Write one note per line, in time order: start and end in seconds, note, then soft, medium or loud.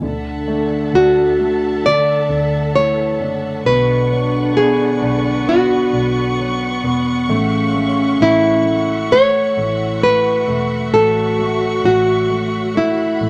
0.02 0.89 D2 loud
0.02 2.25 D3 medium
0.02 1.83 D3 medium
0.02 2.26 D4 medium
0.02 3.63 A4 medium
0.02 3.63 E5 medium
0.02 13.30 F#5 medium
0.02 3.63 A5 medium
0.48 1.37 A3 medium
0.93 2.25 D2 loud
0.93 2.27 D4 medium
0.93 1.88 F#4 medium
1.39 2.74 A3 medium
1.85 3.62 D3 medium
1.85 2.75 D5 medium
2.29 3.16 D2 medium
2.29 3.18 D4 soft
2.75 3.20 E3 medium
2.75 3.63 A3 soft
2.75 3.20 E4 medium
2.75 3.66 C#5 loud
3.20 3.62 F#1 medium
3.20 3.64 D4 medium
3.65 4.75 B1 loud
3.65 7.26 B2 medium
3.65 6.80 D3 medium
3.65 6.79 D4 medium
3.65 4.60 B4 medium
3.65 7.27 B4 medium
3.65 7.26 D5 medium
3.65 10.90 C#6 medium
4.12 5.90 F#3 medium
4.57 5.46 B3 medium
4.57 5.48 G#4 medium
5.02 5.89 B1 medium
5.02 5.92 D4 medium
5.47 6.83 B3 medium
5.47 6.81 F#4 medium
5.93 6.80 B1 loud
5.93 7.26 D4 medium
6.40 7.27 F#3 medium
6.84 7.26 E1 medium
6.84 7.28 B3 medium
7.29 8.16 A1 loud
7.29 9.07 C#3 medium
7.29 7.74 A3 medium
7.29 9.07 C#4 medium
7.29 13.30 F#4 medium
7.29 13.30 E5 medium
7.75 8.19 A3 medium
8.20 9.53 A1 loud
8.20 8.64 A3 medium
8.20 9.15 E4 loud
8.66 9.10 A3 medium
9.11 9.56 A3 medium
9.11 10.03 C#5 loud
9.56 10.44 A1 loud
9.56 10.46 E3 medium
9.56 10.01 A3 medium
9.56 10.46 E4 medium
10.03 10.46 A3 soft
10.03 10.93 B4 loud
10.47 10.90 E1 medium
10.47 10.92 A3 medium
10.92 11.80 A1 loud
10.92 13.16 F#3 medium
10.92 11.37 A3 medium
10.92 13.17 F#4 medium
10.92 11.87 A4 medium
10.92 12.73 C#6 medium
11.39 11.83 A3 medium
11.84 13.16 A1 loud
11.84 12.28 A3 medium
11.84 12.77 F#4 medium
12.30 12.74 A3 medium
12.75 13.20 A3 medium
12.75 13.30 E4 medium
12.75 13.30 B5 medium
13.21 13.30 A1 loud
13.21 13.30 A3 medium